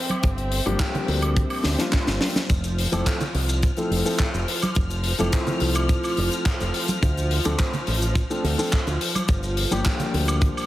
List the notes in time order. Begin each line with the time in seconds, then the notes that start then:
Already playing: C4 E5
0.09 closed hi-hat, high conga, high woodblock
0.23 G1, kick, closed hi-hat
0.38 closed hi-hat
0.52 open hi-hat
0.66 G1 F3 G3 A#3 D4 G4, closed hi-hat, high conga, high woodblock
0.79 F3 G3 A#3 D4 G4, kick, clap, closed hi-hat
0.95 closed hi-hat, low conga
1.08 D2, open hi-hat
1.22 closed hi-hat, high woodblock
1.36 kick, closed hi-hat
1.50 open hi-hat, high woodblock
1.64 D2, snare, open hi-hat
1.78 F3 G3 A#3 D4 F4, snare, closed hi-hat
1.92 kick, snare, clap, closed hi-hat
2.07 G1, snare, closed hi-hat
2.21 snare, open hi-hat, high conga
2.36 snare, closed hi-hat, high conga
2.49 F1 F3 F6, kick, closed hi-hat, shaker
2.64 closed hi-hat, shaker
2.78 open hi-hat
2.92 F1 F3 A3 C4 E4 A4, closed hi-hat, high conga, high woodblock, shaker
3.06 F3 A3 C4 E4 A4, kick, clap, closed hi-hat, shaker
3.20 closed hi-hat, low conga, shaker
3.34 C2, open hi-hat
3.49 closed hi-hat, shaker
3.62 kick, closed hi-hat, shaker
3.77 F3 A3 C4 E4 A4, closed hi-hat, shaker
3.91 F1, open hi-hat
4.05 F3 A3 C4 E4 A4, open hi-hat, shaker
4.19 kick, clap, closed hi-hat, shaker
4.34 F1, closed hi-hat, shaker
4.48 open hi-hat
4.62 closed hi-hat, high conga, high woodblock, shaker
4.75 F1, kick, closed hi-hat, shaker
4.90 closed hi-hat, shaker
5.04 open hi-hat
5.18 F1 F3 A3 C4 E4 A4, closed hi-hat, high conga, high woodblock, shaker
5.31 F3 A3 C4 E4 A4, kick, clap, closed hi-hat, shaker
5.47 closed hi-hat, low conga, shaker
5.60 C2, open hi-hat
5.75 closed hi-hat, high woodblock, shaker
5.89 kick, closed hi-hat, shaker
6.03 open hi-hat, high woodblock, shaker
6.17 F1, open hi-hat
6.32 closed hi-hat, shaker
6.46 kick, clap, closed hi-hat, shaker
6.60 F1, closed hi-hat, shaker
6.74 open hi-hat
6.88 closed hi-hat, high conga, shaker
7.03 D2, kick, closed hi-hat, shaker
7.17 closed hi-hat, shaker
7.31 open hi-hat
7.45 D2 F3 A3 C4 D4 A4, closed hi-hat, high conga, high woodblock, shaker
7.58 F3 A3 C4 D4, kick, clap, closed hi-hat, shaker
7.73 closed hi-hat, low conga, shaker
7.87 A1, open hi-hat
8.02 closed hi-hat, shaker
8.15 kick, closed hi-hat, shaker
8.30 F3 A3 C4 D4 A4, closed hi-hat, shaker
8.44 D2, open hi-hat
8.58 F3 A3 C4 D4 A4, open hi-hat, shaker
8.72 kick, clap, closed hi-hat, shaker
8.87 D2, closed hi-hat, shaker
9.01 open hi-hat
9.15 closed hi-hat, high conga, high woodblock, shaker
9.28 G1, kick, closed hi-hat, shaker
9.43 closed hi-hat, shaker
9.57 open hi-hat
9.71 G1 F3 G3 A#3 D4 G4, closed hi-hat, high conga, high woodblock, shaker
9.85 F3 G3 A#3 D4 G4, kick, clap, closed hi-hat, shaker
10.00 closed hi-hat, low conga, shaker
10.14 D2, open hi-hat
10.28 closed hi-hat, high woodblock, shaker
10.41 kick, closed hi-hat, shaker
10.57 open hi-hat, high woodblock, shaker